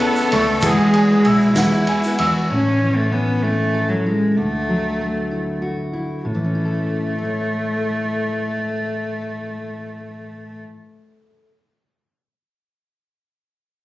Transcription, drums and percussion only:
0.00 ride
0.16 shaker
0.32 ride
0.61 kick, ride, shaker
0.94 ride
1.25 ride
1.40 shaker
1.56 snare, ride, shaker
1.72 shaker
1.87 ride, shaker
2.03 shaker
2.18 ride

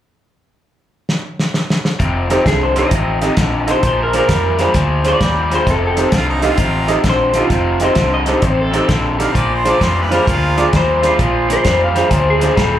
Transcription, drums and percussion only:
1.09 snare
1.40 snare
1.54 snare
1.70 snare
1.85 snare
2.00 kick, closed hi-hat
2.30 snare, closed hi-hat
2.46 kick, snare, closed hi-hat
2.76 snare, closed hi-hat
2.91 kick, closed hi-hat
3.22 snare, closed hi-hat
3.37 kick, snare, closed hi-hat
3.68 snare, closed hi-hat
3.83 kick, closed hi-hat
4.13 snare, closed hi-hat
4.29 kick, snare, closed hi-hat
4.59 snare, closed hi-hat
4.74 kick, snare, closed hi-hat
5.05 snare, closed hi-hat
5.21 kick, snare, closed hi-hat
5.51 snare, closed hi-hat
5.67 kick, snare, closed hi-hat
5.97 snare, closed hi-hat
6.12 kick, snare, closed hi-hat
6.42 snare, closed hi-hat
6.58 kick, closed hi-hat
6.88 snare, closed hi-hat
7.04 kick, snare, closed hi-hat
7.34 snare, closed hi-hat
7.50 kick, snare, closed hi-hat
7.80 snare, closed hi-hat
7.95 kick, snare, closed hi-hat
8.26 snare, closed hi-hat
8.42 kick, closed hi-hat
8.74 snare, closed hi-hat
8.89 kick, snare, closed hi-hat
9.20 snare, closed hi-hat
9.35 kick, closed hi-hat
9.65 snare, closed hi-hat
9.81 kick, snare, closed hi-hat
10.12 snare, closed hi-hat
10.27 kick, closed hi-hat
10.58 snare, closed hi-hat
10.73 kick, snare, closed hi-hat
11.03 snare, closed hi-hat
11.19 kick, closed hi-hat
11.50 snare, closed hi-hat
11.65 kick, snare, closed hi-hat
11.96 snare, closed hi-hat
12.11 kick, closed hi-hat
12.41 snare, closed hi-hat
12.57 kick, snare, closed hi-hat

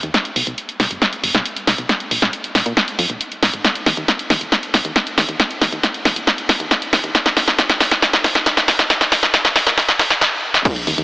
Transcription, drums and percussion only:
0.03 closed hi-hat
0.14 snare, closed hi-hat
0.25 closed hi-hat
0.36 open hi-hat
0.47 closed hi-hat
0.58 closed hi-hat
0.69 closed hi-hat
0.80 snare, open hi-hat
0.91 closed hi-hat
1.02 snare, closed hi-hat
1.13 closed hi-hat
1.24 open hi-hat
1.35 snare, closed hi-hat
1.45 closed hi-hat
1.56 closed hi-hat
1.67 snare, open hi-hat
1.78 closed hi-hat
1.89 snare, closed hi-hat
2.00 closed hi-hat
2.11 open hi-hat
2.22 snare, closed hi-hat
2.33 closed hi-hat
2.44 closed hi-hat
2.55 snare, open hi-hat
2.66 closed hi-hat
2.77 snare, closed hi-hat
2.88 closed hi-hat
2.99 open hi-hat
3.10 closed hi-hat
3.21 closed hi-hat
3.32 closed hi-hat
3.43 snare, open hi-hat
3.54 closed hi-hat
3.64 snare, closed hi-hat
3.75 closed hi-hat
3.86 snare, open hi-hat
3.97 closed hi-hat
4.08 snare, closed hi-hat
4.19 closed hi-hat
4.30 snare, open hi-hat
4.41 closed hi-hat
4.52 snare, closed hi-hat
4.63 closed hi-hat
4.74 snare, open hi-hat
4.85 closed hi-hat
4.96 snare, closed hi-hat
5.07 closed hi-hat
5.18 snare, open hi-hat
5.29 closed hi-hat
5.40 snare, closed hi-hat
5.51 closed hi-hat
5.62 snare, open hi-hat
5.72 closed hi-hat
5.83 snare, closed hi-hat
5.94 closed hi-hat
6.05 snare, open hi-hat
6.16 closed hi-hat
6.27 snare, closed hi-hat
6.38 closed hi-hat
6.49 snare, open hi-hat
6.60 closed hi-hat
6.71 snare, closed hi-hat
6.82 closed hi-hat
6.93 snare, open hi-hat
7.04 closed hi-hat
7.15 snare, closed hi-hat
7.26 snare, closed hi-hat
7.37 snare, open hi-hat
7.48 snare, closed hi-hat
7.59 snare, closed hi-hat
7.70 snare, closed hi-hat
7.80 snare, open hi-hat
7.91 snare, closed hi-hat
8.02 snare, closed hi-hat
8.13 snare, closed hi-hat
8.24 snare, open hi-hat
8.35 snare, closed hi-hat
8.46 snare, closed hi-hat
8.57 snare, closed hi-hat
8.68 snare, open hi-hat
8.79 snare, closed hi-hat
8.90 snare, closed hi-hat
9.01 snare, closed hi-hat
9.12 snare, open hi-hat
9.23 snare, closed hi-hat
9.34 snare, closed hi-hat
9.45 snare, closed hi-hat
9.56 snare, open hi-hat
9.67 snare, closed hi-hat
9.78 snare, open hi-hat
9.88 snare, closed hi-hat
9.99 snare, open hi-hat
10.10 snare, closed hi-hat
10.21 snare
10.54 snare
10.65 kick, closed hi-hat, crash
10.76 closed hi-hat
10.87 open hi-hat
10.98 closed hi-hat

